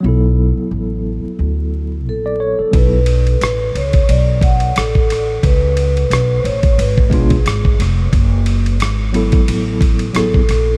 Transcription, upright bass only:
X:1
M:4/4
L:1/16
Q:"Swing 16ths" 1/4=89
K:Bm
V:1 name="Upright bass" clef=bass
B,,,3 z A,,,3 z D,,4 ^A,,,3 z | B,,,4 A,,,2 C,,2 B,,,4 A,,,4 | C,,4 B,,,2 A,,,2 ^G,,,2 B,,,2 G,,,2 ^E,,,2 | F,,,4 ^G,,,4 A,,,4 A,,,2 ^A,,,2 |]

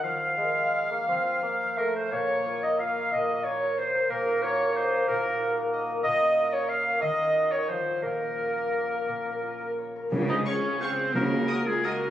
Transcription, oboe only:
X:1
M:3/4
L:1/8
Q:1/4=178
K:Bbm
V:1 name="Oboe"
f6- | f4 B c | d3 e f2 | e2 d2 c2 |
B2 d2 c2 | B3 z3 | e3 d f2 | e3 d c2 |
B6- | B4 z2 | [K:Db] z e d2 c2 | B3 A B2 |]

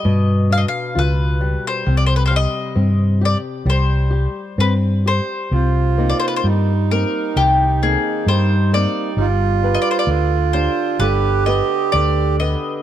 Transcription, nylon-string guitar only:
X:1
M:2/4
L:1/8
Q:1/4=66
K:Cm
V:1 name="Nylon-string guitar"
=B,, D F G, | C, G, C G | G, G C G | C, [B,CE] G, [B,CE] |
E, [B,CE] G, [B,CE] | G, [DG=B] D, [DGd] | D, [=B,G=B] D, [B,GB] |]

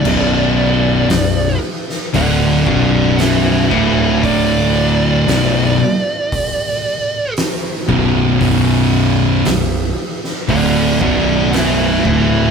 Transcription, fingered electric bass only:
X:1
M:4/4
L:1/8
Q:1/4=58
K:Bm
V:1 name="Fingered electric bass" clef=bass
B,,,,2 B,,,, z D,,, B,,,,2 D,,,- | D,,,2 B,,,, z4 B,,,, | B,,,,2 B,,,, z D,,, B,,,,2 D,,, |]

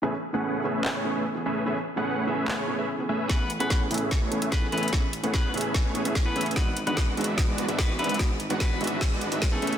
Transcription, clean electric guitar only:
X:1
M:4/4
L:1/16
Q:1/4=147
K:A
V:1 name="Clean electric guitar"
z16 | z16 | [B,B]2 z [B,B]2 z6 z [B,B] z [B,B]2 | z4 [B,B]2 z6 z [B,B]2 z |
[B,B]2 z [B,B]2 z6 z [B,B] z [B,B]2 | z4 [B,B]2 z6 z [A,A]2 z |]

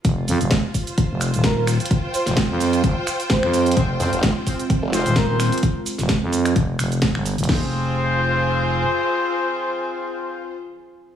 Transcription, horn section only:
X:1
M:4/4
L:1/8
Q:"Swing 16ths" 1/4=129
K:Fm
V:1 name="Horn section"
z8 | z8 | [CFAc] [CFAc] z [CFAc] z [CFAc]3 | z8 |
[CFAc]8- | [CFAc]8 |]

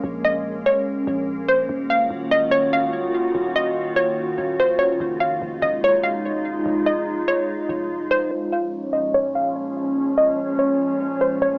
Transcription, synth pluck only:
X:1
M:4/4
L:1/8
Q:1/4=145
K:Bbm
V:1 name="Synth pluck"
z e2 d4 c | z f2 e d f3 | z e2 d3 c d | z f2 e d f3 |
z e2 d4 c | z f2 e d f3 | z e2 d3 c d |]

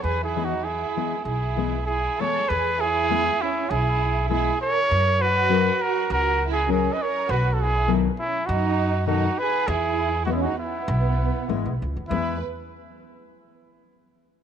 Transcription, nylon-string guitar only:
X:1
M:4/4
L:1/8
Q:1/4=100
K:E
V:1 name="Nylon-string guitar"
z [E,G,B,EG] z [E,G,B,EG] z [E,G,B,EG] z [E,G,B,EG] | z2 [E,G,B,EG] z3 [E,G,B,EG] z | z2 [F,CF^A] z3 [F,CFA] z | z2 [B,,D,F,B,DA] z3 [B,,D,F,B,DA] z |
z2 [E,G,B,EG] z3 [E,G,B,EG] z | [E,G,B,EG] z6 z |]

